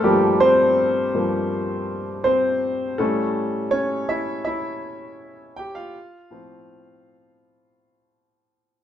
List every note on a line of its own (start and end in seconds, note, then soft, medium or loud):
0.00 0.04 G2 soft
0.00 0.53 G2 medium
0.00 0.05 F3 soft
0.00 3.00 A3 medium
0.00 0.05 A#3 medium
0.00 0.42 C4 medium
0.00 0.12 G4 medium
0.00 2.98 A4 medium
0.00 3.02 A#4 loud
0.00 0.40 C5 medium
0.05 0.54 F3 medium
0.05 0.14 G3 medium
0.05 0.54 A#3 medium
0.40 2.22 C4 medium
0.40 2.23 C5 loud
1.14 1.48 G2 soft
1.14 1.48 F3 soft
1.14 1.48 A#3 soft
2.24 2.95 C4 medium
2.24 3.01 C5 medium
2.98 5.91 A2 medium
2.98 5.91 G3 soft
2.98 3.70 A3 medium
2.98 3.72 C#4 medium
2.98 3.75 A4 medium
3.71 4.08 C#4 medium
3.71 4.10 C#5 loud
4.09 4.45 E4 medium
4.09 4.43 E5 medium
4.45 5.54 E4 medium
4.45 5.60 E5 medium
5.56 5.76 G4 medium
5.56 5.74 G5 loud
5.75 8.50 F4 medium
5.75 8.49 F5 medium
6.30 6.80 A2 medium
6.30 6.81 F3 soft
6.30 6.81 C4 medium